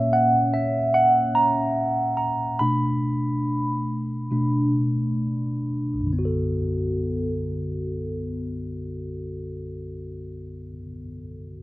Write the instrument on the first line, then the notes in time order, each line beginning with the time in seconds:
tine electric piano
Already playing: A#2 A#3 C#4 C#5 E5
0.13 F#5
0.54 E5
0.94 F#5
1.35 A#5
2.17 A#5
2.59 B2 A3 D4 B5
4.31 B2 A3 D4
5.94 B1
6.00 F#2
6.07 D3
6.13 B3
6.19 F#4
6.25 A4